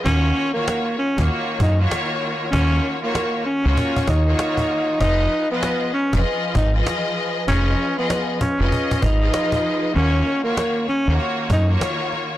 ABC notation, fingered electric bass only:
X:1
M:4/4
L:1/16
Q:"Swing 16ths" 1/4=97
K:Ebm
V:1 name="Fingered electric bass" clef=bass
E,,2 z4 z E,, z2 G,,2 z4 | E,,2 z4 z D,, z2 E,,2 z4 | F,,,2 z4 z F,,, z2 A,,,2 z4 | F,,,2 z4 z F,,, z2 A,,,2 z4 |
E,,2 z4 z E,, z2 G,,2 z4 |]